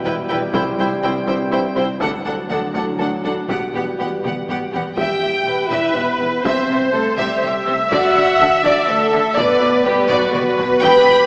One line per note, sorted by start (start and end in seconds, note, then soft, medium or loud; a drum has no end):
0.00 0.50 B2 medium
0.00 1.97 G3 medium
0.00 0.37 B3 medium
0.00 1.96 E4 medium
0.05 0.13 E1 medium
0.05 0.13 E2 medium
0.05 0.14 E4 soft
0.05 0.13 B4 medium
0.05 0.13 G5 soft
0.29 0.38 E1 medium
0.29 0.38 E2 medium
0.29 0.39 E4 soft
0.29 0.38 B4 medium
0.29 0.37 G5 medium
0.54 0.62 C2 medium
0.54 1.97 G2 medium
0.54 1.96 C4 medium
0.54 0.62 E4 medium
0.54 0.63 C5 medium
0.54 0.62 G5 medium
0.54 taiko medium
0.78 0.86 C2 medium
0.78 0.87 C2 medium
0.78 0.87 E4 medium
0.78 0.88 C5 soft
0.78 0.88 G5 medium
1.03 1.11 C2 medium
1.03 1.11 E4 soft
1.03 1.11 C5 soft
1.03 1.11 G5 soft
1.27 1.35 C2 soft
1.27 1.35 C2 medium
1.27 1.35 E4 soft
1.27 1.35 C5 soft
1.27 1.36 G5 soft
1.27 taiko medium
1.51 1.60 C2 medium
1.51 1.60 E4 soft
1.51 1.59 C5 medium
1.51 1.61 G5 soft
1.76 1.84 C2 medium
1.76 1.84 E4 soft
1.76 1.84 C5 soft
1.76 1.86 G5 soft
2.00 2.08 D2 medium
2.00 2.09 D2 medium
2.00 3.45 A2 medium
2.00 3.45 F#3 medium
2.00 3.44 D4 medium
2.00 2.09 D4 medium
2.00 4.69 F#4 medium
2.00 2.09 A4 medium
2.00 2.10 F#5 medium
2.00 taiko medium
2.25 2.33 D2 soft
2.25 2.34 D2 soft
2.25 2.34 D4 soft
2.25 2.33 A4 soft
2.25 2.34 F#5 soft
2.49 2.57 D2 soft
2.49 2.58 D2 medium
2.49 2.59 D4 soft
2.49 2.58 A4 soft
2.49 2.59 F#5 soft
2.73 2.81 D2 soft
2.73 2.82 D2 medium
2.73 2.84 D4 soft
2.73 2.84 A4 soft
2.73 2.83 F#5 soft
2.73 taiko medium
2.99 3.07 D2 soft
2.99 3.09 D4 soft
2.99 3.07 A4 soft
2.99 3.09 F#5 soft
3.24 3.32 D2 soft
3.24 3.33 D4 soft
3.24 3.32 A4 soft
3.24 3.33 F#5 soft
3.48 3.57 E1 soft
3.48 3.57 E2 soft
3.48 4.69 B2 medium
3.48 4.69 G3 medium
3.48 4.69 B3 soft
3.48 3.58 B3 soft
3.48 3.57 G4 soft
3.48 3.59 F#5 soft
3.48 taiko medium
3.74 3.82 E1 soft
3.74 3.83 E2 soft
3.74 3.83 B3 soft
3.74 3.83 G4 soft
3.74 3.84 F#5 soft
3.99 4.07 E1 soft
3.99 4.08 E2 soft
3.99 4.08 B3 soft
3.99 4.07 G4 soft
3.99 4.09 F#5 soft
4.24 4.32 E1 soft
4.24 4.33 E2 soft
4.24 4.33 B3 soft
4.24 4.32 G4 soft
4.24 4.34 F#5 soft
4.24 taiko mid medium
4.48 4.56 E1 soft
4.48 4.58 E2 soft
4.48 4.58 B3 soft
4.48 4.56 G4 soft
4.48 4.58 F#5 soft
4.48 taiko low-mid medium
4.72 4.80 E1 soft
4.72 4.83 E2 soft
4.72 4.83 B3 soft
4.72 4.80 G4 soft
4.72 4.83 F#5 soft
4.72 taiko low medium
4.97 5.05 E1 medium
4.97 5.68 E2 medium
4.97 5.07 E2 soft
4.97 5.68 G4 medium
4.97 5.22 E5 soft
4.97 5.67 G5 medium
4.97 taiko medium
5.22 5.30 E1 soft
5.22 5.32 E2 soft
5.22 5.31 E5 soft
5.46 5.54 E1 soft
5.46 5.55 E2 soft
5.46 5.56 B4 soft
5.46 6.42 B4 medium
5.69 5.78 E1 medium
5.69 5.80 E2 medium
5.69 5.95 E4 medium
5.69 5.94 E5 medium
5.69 5.94 E5 soft
5.69 taiko medium
5.94 6.03 E1 soft
5.94 6.04 E2 soft
5.94 6.44 B3 medium
5.94 6.45 B4 medium
5.94 6.05 E5 soft
6.20 6.28 E1 soft
6.20 6.29 E2 soft
6.20 6.31 B4 soft
6.43 6.52 C2 medium
6.43 6.53 C3 soft
6.43 6.92 C4 medium
6.43 6.93 C5 medium
6.43 7.41 C5 medium
6.43 6.69 E5 medium
6.43 taiko medium
6.69 6.77 C2 soft
6.69 6.77 C3 soft
6.69 6.79 E5 soft
6.92 7.02 C2 soft
6.92 7.01 C3 soft
6.92 7.17 A3 medium
6.92 7.18 A4 medium
6.92 7.03 C5 soft
7.17 7.27 C2 medium
7.17 7.25 C3 soft
7.17 7.67 G3 medium
7.17 7.66 G4 soft
7.17 7.41 E5 medium
7.17 taiko medium
7.43 7.51 C2 soft
7.43 7.51 C3 soft
7.43 7.51 E5 soft
7.43 9.37 E5 medium
7.66 7.75 C2 soft
7.66 7.75 C3 soft
7.66 7.74 C5 soft
7.91 8.00 D2 medium
7.91 7.99 D3 medium
7.91 8.60 F#4 medium
7.91 8.14 D5 medium
7.91 8.61 F#5 medium
7.91 taiko medium
8.15 8.23 D2 soft
8.15 8.24 D3 soft
8.15 8.24 D5 soft
8.39 8.47 D2 soft
8.39 8.48 D3 soft
8.39 8.49 A4 soft
8.63 8.72 D2 medium
8.63 8.71 D3 medium
8.63 8.88 D4 medium
8.63 8.87 D5 medium
8.63 8.89 D5 medium
8.63 taiko medium
8.88 8.96 D2 soft
8.88 8.96 D3 soft
8.88 9.37 A3 medium
8.88 9.37 A4 medium
8.88 8.96 D5 soft
9.12 9.21 D2 soft
9.12 9.21 D3 medium
9.12 9.20 A4 soft
9.36 9.44 B1 medium
9.36 9.45 B2 medium
9.36 9.86 B3 medium
9.36 9.85 B4 medium
9.36 9.60 D5 medium
9.36 9.85 D5 medium
9.36 taiko medium
9.61 9.69 B1 soft
9.61 9.69 B2 soft
9.61 9.69 D5 soft
9.85 9.93 B1 soft
9.85 9.93 B2 medium
9.85 10.11 G3 medium
9.85 10.10 G4 medium
9.85 9.93 B4 soft
9.85 10.34 B4 medium
10.08 10.18 B1 medium
10.08 10.17 B2 medium
10.08 10.35 F#3 medium
10.08 10.34 F#4 medium
10.08 10.32 D5 medium
10.08 taiko low-mid medium
10.33 10.42 B1 soft
10.33 10.41 B2 soft
10.33 10.82 B3 medium
10.33 10.84 F#4 medium
10.33 10.83 B4 medium
10.33 10.41 D5 medium
10.33 taiko mid medium
10.58 10.66 B1 medium
10.58 10.66 B2 medium
10.58 10.66 B4 medium
10.58 taiko low medium
10.82 10.90 E1 medium
10.82 10.91 E2 medium
10.82 11.26 G4 medium
10.82 11.26 B4 loud
10.82 11.05 G5 medium
10.82 11.26 B5 medium
10.82 taiko medium
11.06 11.15 E1 soft
11.06 11.15 E2 soft
11.06 11.14 G5 medium